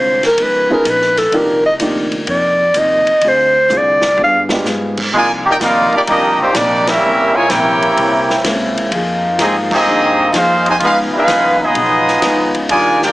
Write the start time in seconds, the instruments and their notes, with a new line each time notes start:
Already playing: upright bass C2, hollow-body jazz guitar D3 G#3 C4 F4, clarinet C5
0.23 clarinet A#4, snare, ride
0.37 upright bass C#2, hollow-body jazz guitar C#3 F3 B3 D#4, ride
0.43 clarinet B4
0.69 grand piano B3 C#4 D#4 F4 G#4
0.73 clarinet A#4
0.84 upright bass A#1, hollow-body jazz guitar C#3 F3 B3 D#4, hi-hat pedal, ride
0.90 clarinet B4
1.01 snare
1.17 clarinet A4, snare, ride
1.32 upright bass C2, hollow-body jazz guitar C3 F3 A#3 D#4, grand piano A#3 D4 D#4 F4 G4, ride
1.36 clarinet A#4
1.66 clarinet D#5
1.79 upright bass D2, hollow-body jazz guitar C3 F3 A#3 D#4, grand piano A#3 D4 D#4 F4 G4, hi-hat pedal, ride
2.12 ride
2.27 upright bass F2, hollow-body jazz guitar C3 F3 A#3 D#4, clarinet D5, ride
2.74 upright bass D#2, hollow-body jazz guitar C3 F3 A#3 D#4, hi-hat pedal, ride
2.78 clarinet D#5
3.07 muted upright bass stroke, ride
3.21 upright bass D2, hollow-body jazz guitar D3 C4 F4 G#4, ride
3.28 clarinet C5
3.69 upright bass C2, hollow-body jazz guitar D3 C4 F4 G#4, hi-hat pedal, mid tom
3.77 clarinet D5
4.01 snare
4.16 upright bass G2, hollow-body jazz guitar G3 B3 F4 G#4, floor tom
4.24 clarinet F5
4.49 grand piano G#3 B3 D4 F4 G4, snare
4.64 upright bass G#2, hollow-body jazz guitar G3 B3 F4 G#4, snare, hi-hat pedal
4.97 kick, crash
5.12 upright bass C2, hollow-body jazz guitar C3 F3 A#3 D#4, trombone section D#3 G#3 D4 F4
5.17 trumpet section F4 A#4 D5 G#5
5.45 trombone section A#3 D#4 G4
5.50 trumpet section D#4 A#4 D5 G5
5.60 upright bass D#2, hollow-body jazz guitar C3 F3 A#3 D#4, trombone section G3 A#3 F4, trumpet section A#4 F5, snare, hi-hat pedal, ride
5.64 trumpet section D#4 D5
5.92 trombone section G3 A#3 D4, trumpet section A#3 D#4 G4 D5, kick
6.07 upright bass C2, hollow-body jazz guitar C3 F3 A#3, trombone section G3 A#3 D#4, trumpet section A#3 D4 G4 D#5, ride
6.11 hollow-body jazz guitar D#4
6.39 trombone section D#3 G3 C4, trumpet section A#3 D#4 G4 C5, muted upright bass stroke
6.54 upright bass A#1, hollow-body jazz guitar C3 F3 A#3 D#4, trombone section G3 A#3 D4, trumpet section A#3 D#4 G4 D5, snare, hi-hat pedal, ride
6.87 trombone section G3 A#3 E4, trumpet section C#4 G4 A#4 E5, snare, ride
7.02 upright bass C2, hollow-body jazz guitar C3 E3 A#3 C#4, trombone section C#3 C4 E4
7.33 trombone section G#3, trumpet section F4 A#4 C#5 G#5
7.49 upright bass A#1, hollow-body jazz guitar C3 E3 A#3 C#4, trombone section A#3 E4 G4, trumpet section E4 A#4 C#5 G5, snare, hi-hat pedal, ride
7.82 ride
7.96 upright bass C2, hollow-body jazz guitar C3 E3 A#3 C#4, ride
8.30 snare
8.44 upright bass C#2, hollow-body jazz guitar C3 E3 A#3 C#4, snare, hi-hat pedal, ride
8.77 ride
8.91 upright bass F2, trombone section F3 D#4 F4, hollow-body jazz guitar F3 A#3 D#4 G#4, ride
9.38 upright bass G#2, hollow-body jazz guitar F3 A#3 D#4 G#4, trombone section G#3 C4 D#4, trumpet section C4 G4 G#4 D#5, snare, hi-hat pedal, ride
9.71 trombone section A#3 C4 D#4, trumpet section C4 G4 G#4 D#5, kick, crash
9.86 upright bass G2, hollow-body jazz guitar F3 A#3 D#4 G#4
10.32 upright bass F2, hollow-body jazz guitar F3 A#3 D#4, trombone section G#3 C4 F4, trumpet section D#4 G#4 C5 F5, snare, hi-hat pedal, ride
10.36 hollow-body jazz guitar G#4
10.66 trombone section C3 D#3 G#3, trumpet section D#4 G4 C5 G#5, ride
10.80 upright bass C#2, hollow-body jazz guitar C#3 F3 B3 D#4, trombone section G#3 B3 C#4 F4, ride
10.84 trumpet section D#4 G#4 B4 F5
11.12 trombone section G#3 B3 F4, muted upright bass stroke
11.16 trumpet section D#4 G#4 B4 F5
11.27 upright bass D#2, hollow-body jazz guitar C#3 F3 B3 D#4, snare, hi-hat pedal, ride
11.59 trombone section G#3 B3 D#4
11.64 trumpet section B3 F4 G#4 D#5
11.74 upright bass B1, hollow-body jazz guitar C#3 F3 B3 D#4, ride
12.07 snare
12.22 upright bass C#2, hollow-body jazz guitar C#3 F3 B3 D#4, snare, hi-hat pedal, ride
12.54 ride
12.69 upright bass D#2, hollow-body jazz guitar D#3 G3 D4 F4, trombone section G3 G#3 D4, trumpet section F4 A#4 D5 G#5, ride
13.01 trombone section A#3 D4 G4, trumpet section F4 A#4 D5 G5, snare